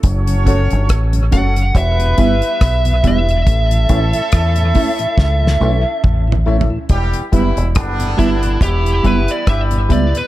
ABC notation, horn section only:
X:1
M:4/4
L:1/16
Q:"Swing 16ths" 1/4=70
K:Edor
V:1 name="Horn section"
[CFAc]6 z2 [B,EGB]6 z2 | [A,CEA]12- [A,CEA]2 z2 | [G,B,EG]2 [E,G,B,E]2 [D,G,B,D]4 [E,G,B,E]4 [G,B,EG]3 z |]